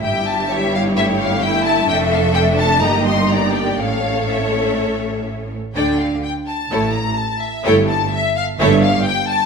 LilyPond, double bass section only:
\new Staff \with { instrumentName = "Double bass section" } { \clef bass \time 4/4 \key a \phrygian \tempo 4 = 128 g,,1 | f,,2 g,,2 | a,,2.~ a,,8 r8 | d,4 r4 a,,4 r4 |
g,,4 r4 g,,4 r4 | }